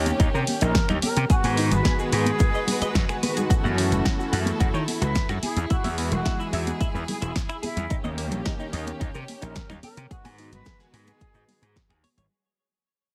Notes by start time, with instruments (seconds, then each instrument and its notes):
Already playing: analog synth pad D#3 A#3 C#4 A#4, violin section C#4 G4
0.06 closed hi-hat, high conga, cabasa
0.20 slap bass D#2, clean electric guitar D#4, kick, closed hi-hat, cabasa
0.34 slap bass C3, clean electric guitar A#4, cabasa
0.47 open hi-hat, high conga
0.61 slap bass A#1, clean electric guitar D#4, flute A#4, closed hi-hat, cabasa
0.75 finger snap, kick, snare, closed hi-hat, cabasa
0.89 slap bass D#2, clean electric guitar D#4, finger snap, low conga, cabasa
1.02 clean electric guitar G4, flute A#4, muted slap bass stroke, open hi-hat, high conga
1.16 slap bass C3, clean electric guitar G4, closed hi-hat, cabasa
1.29 analog synth pad D#3 G#3 B3 F#4, violin section G#3 F#4 B4, flute F#4, clean electric guitar G#4, muted slap bass stroke, kick, closed hi-hat, cabasa
1.43 slap bass G#2, clean electric guitar G#5, open hi-hat, high conga, cabasa
1.57 clean electric guitar D#4, open hi-hat
1.72 slap bass G#1, flute B4, closed hi-hat, low conga, cabasa
1.85 clean electric guitar G#4, kick, snare, closed hi-hat, high conga, cabasa
1.99 clean electric guitar G#4, cabasa
2.12 slap bass G#2, analog synth pad D#3 G#3 B3 G#4, flute G#4, clean electric guitar G#5, open hi-hat
2.26 closed hi-hat, high conga, cabasa
2.39 clean electric guitar G#4, kick, closed hi-hat, cabasa
2.54 clean electric guitar D#5, cabasa
2.67 open hi-hat, high conga, low conga
2.81 clean electric guitar D#5, muted slap bass stroke, closed hi-hat, cabasa
2.95 slap bass F#2, finger snap, kick, snare, closed hi-hat, cabasa
3.08 analog synth pad D#3 G#3 B3 F#4, clean electric guitar G#4, finger snap, cabasa
3.23 clean electric guitar B4, open hi-hat, high conga
3.37 clean electric guitar G#4, closed hi-hat, low conga, cabasa
3.49 analog synth pad E3 A3 C#4 F#4, violin section E4 A4, clean electric guitar F#4, muted slap bass stroke, kick, closed hi-hat, cabasa
3.64 slap bass F#2, clean electric guitar F#5, high conga, cabasa
3.77 clean electric guitar C#4, open hi-hat
3.92 slap bass F#1, closed hi-hat, low conga, cabasa
4.05 clean electric guitar F#4, kick, snare, closed hi-hat, high conga, cabasa
4.19 clean electric guitar F#4, cabasa
4.32 slap bass F#2, analog synth pad E3 A3 C#4 G#4, clean electric guitar F#5, open hi-hat
4.46 closed hi-hat, high conga, cabasa
4.60 slap bass F#2, clean electric guitar F#4, kick, closed hi-hat, cabasa
4.74 slap bass D#3, clean electric guitar C#5, cabasa
4.88 open hi-hat, high conga
5.01 slap bass C#2, clean electric guitar F#4, flute B4, closed hi-hat, cabasa
5.15 finger snap, kick, snare, closed hi-hat, cabasa
5.29 slap bass F#2, clean electric guitar F#4, finger snap, low conga, cabasa
5.42 flute G#4, clean electric guitar G#4, violin section G#4, muted slap bass stroke, open hi-hat, high conga
5.56 slap bass E2, clean electric guitar G#4, closed hi-hat, cabasa
5.69 analog synth pad E3 G#3 F#4, clean electric guitar E4, flute F#4, muted slap bass stroke, kick, closed hi-hat, cabasa
5.84 slap bass E2, clean electric guitar E5, open hi-hat, high conga, cabasa
5.98 clean electric guitar B3, open hi-hat
6.11 slap bass E1, flute F#4, closed hi-hat, low conga, cabasa
6.25 clean electric guitar E4, kick, snare, closed hi-hat, high conga, cabasa
6.39 clean electric guitar E4, cabasa
6.53 slap bass E2, analog synth pad E3 G#3 D#4 G#4, clean electric guitar E5, open hi-hat
6.67 closed hi-hat, high conga, cabasa
6.81 clean electric guitar E4, kick, closed hi-hat, cabasa
6.94 slap bass E2, clean electric guitar B4, cabasa
7.08 flute G#4, open hi-hat, high conga, low conga
7.22 slap bass E1, clean electric guitar E4, flute G#4, closed hi-hat, cabasa
7.36 finger snap, kick, snare, closed hi-hat, cabasa
7.49 clean electric guitar E4, finger snap, cabasa
7.62 flute E4, clean electric guitar G#4, muted slap bass stroke, open hi-hat, high conga
7.76 slap bass E2, clean electric guitar G#4, closed hi-hat, low conga, cabasa
7.89 analog synth pad D#3 A#3 C#4 G4, violin section C#4 G4, clean electric guitar D#4, muted slap bass stroke, kick, closed hi-hat, cabasa
8.04 slap bass D#2, clean electric guitar D#5, high conga, cabasa
8.18 clean electric guitar A#3, open hi-hat
8.31 slap bass A#1, closed hi-hat, low conga, cabasa
8.45 clean electric guitar D#4, kick, snare, closed hi-hat, high conga, cabasa
8.60 clean electric guitar D#4, cabasa
8.73 slap bass D#2, analog synth pad D#3 A#3 C#4 A#4, clean electric guitar D#5, open hi-hat
8.87 closed hi-hat, high conga, cabasa
9.00 slap bass D#2, clean electric guitar D#4, kick, closed hi-hat, cabasa
9.14 slap bass C3, clean electric guitar A#4, cabasa
9.28 open hi-hat, high conga
9.42 slap bass A#1, clean electric guitar D#4, flute A#4, closed hi-hat, cabasa
9.56 finger snap, kick, snare, closed hi-hat, cabasa
9.69 slap bass D#2, clean electric guitar D#4, finger snap, low conga, cabasa
9.83 clean electric guitar G4, flute A#4, muted slap bass stroke, open hi-hat, high conga
9.97 slap bass C3, clean electric guitar G4, closed hi-hat, cabasa
10.10 analog synth pad D#3 G#3 B3 F#4, violin section G#3 F#4 B4, flute F#4, clean electric guitar G#4, kick, closed hi-hat, cabasa
10.25 slap bass G#2, clean electric guitar G#5, open hi-hat, high conga, cabasa
10.38 clean electric guitar D#4, open hi-hat
10.52 slap bass G#1, flute B4, closed hi-hat, low conga, cabasa
10.65 clean electric guitar G#4, kick, snare, closed hi-hat, high conga, cabasa
10.80 clean electric guitar G#4, snare, cabasa
10.93 slap bass G#2, analog synth pad D#3 G#3 B3 G#4, flute G#4, clean electric guitar G#5, open hi-hat
11.07 closed hi-hat, high conga, cabasa
11.20 clean electric guitar G#4, kick, closed hi-hat, cabasa
11.34 slap bass G#2, clean electric guitar D#5, cabasa
11.48 open hi-hat, high conga, low conga
11.62 slap bass G#2, clean electric guitar G#4, closed hi-hat, cabasa
11.76 finger snap, kick, snare, closed hi-hat, cabasa
11.89 slap bass D#2, clean electric guitar G#4, finger snap, cabasa
12.03 clean electric guitar C#5, muted slap bass stroke, open hi-hat, high conga
12.17 slap bass G#1, clean electric guitar C#5, closed hi-hat, low conga, cabasa